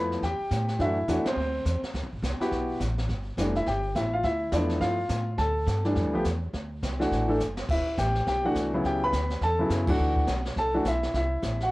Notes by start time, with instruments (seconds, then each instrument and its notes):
Already playing: upright bass F2, grand piano F3 A3 B3 E4 B4 B5
0.12 snare
0.22 upright bass E2, grand piano G4 G5, brush sweep, kick, snare
0.40 muted upright bass stroke
0.51 upright bass A2, kick, snare, hi-hat pedal
0.68 snare
0.79 upright bass F#2, grand piano E3 A3 D4 E4 F#4 E5, brush sweep, kick, snare
1.08 upright bass E2, grand piano E3 A3 D4 F#4, kick, snare, hi-hat pedal
1.25 grand piano C4 C5, muted upright bass stroke, snare, ride
1.36 upright bass D2, brush sweep
1.65 upright bass E2, kick, snare, hi-hat pedal
1.82 muted upright bass stroke, snare
1.94 upright bass D2, brush sweep, kick, snare
2.03 upright bass C2
2.13 upright bass A1
2.23 upright bass C2, kick, snare, hi-hat pedal
2.40 grand piano B3 E4 F#4 G4, muted upright bass stroke, snare
2.51 upright bass B1, brush sweep, kick, snare
2.80 upright bass A1, kick, snare, hi-hat pedal
2.98 snare
3.09 upright bass G1, brush sweep, kick, snare
3.37 upright bass F1, grand piano E3 G3 A3 D4, kick, snare, hi-hat pedal
3.55 grand piano E4 E5, snare
3.66 upright bass G1, grand piano G4 G5, brush sweep, kick, snare
3.95 upright bass A1, grand piano E4 E5, kick, snare, hi-hat pedal
4.14 grand piano F4 F5
4.23 upright bass D2, grand piano E4 E5, brush sweep, kick, snare
4.52 upright bass E2, grand piano F3 A3 B3 D4 E4 D5, kick, snare, hi-hat pedal
4.69 snare
4.81 upright bass G2, grand piano F4 F5, brush sweep, kick, snare
5.09 upright bass A2, kick, snare, hi-hat pedal
5.38 upright bass D2, grand piano A4 A5, brush sweep, kick, snare
5.67 upright bass G2, kick, snare, hi-hat pedal
5.84 grand piano E3 G3 A3 D4, snare
5.95 upright bass F2, brush sweep, kick, snare
6.05 upright bass D2
6.13 upright bass B1, grand piano F3 A3 B3 G4
6.25 upright bass E2, kick, snare, hi-hat pedal
6.53 upright bass D2, brush sweep, kick, snare
6.83 upright bass C2, kick, snare, hi-hat pedal
6.99 grand piano E3 A3 D4 F#4, snare
7.11 upright bass A1, brush sweep, kick, snare
7.28 grand piano E3 A3 D4 A4
7.40 upright bass F#1, snare, hi-hat pedal
7.57 snare
7.68 upright bass E1, grand piano E4 E5, brush sweep, kick, snare, crash
7.97 upright bass A1, grand piano G4 G5, kick, snare, hi-hat pedal
8.15 snare
8.26 upright bass B1, grand piano G4 G5, brush sweep, kick, snare
8.44 grand piano E3 A3 D4 F#4 F#5
8.55 upright bass C2, kick, snare, hi-hat pedal
8.74 grand piano C#3 F#3 B3 E4
8.84 upright bass C#2, grand piano G4 G5, brush sweep, kick, snare
9.04 grand piano B4 B5
9.12 upright bass D2, kick, snare, hi-hat pedal
9.30 snare
9.41 upright bass E2, grand piano A4 A5, brush sweep, kick, snare
9.59 grand piano C#3 F#3 B3 E4
9.70 upright bass F#2, kick, snare, hi-hat pedal
9.87 grand piano E3 A3 D4 F#4 F#5, kick, ride
9.98 upright bass D2, brush sweep
10.16 kick
10.27 upright bass B1, snare, hi-hat pedal
10.45 snare
10.56 upright bass C2, grand piano A4 A5, brush sweep, kick, snare
10.74 grand piano E3 A3 D4 F#4
10.85 upright bass B1, grand piano E4 E5, kick, snare, hi-hat pedal
11.03 snare
11.13 upright bass C2, grand piano E4 E5, brush sweep, kick, snare
11.42 upright bass A1, kick, snare, hi-hat pedal
11.60 grand piano F#4 F#5, snare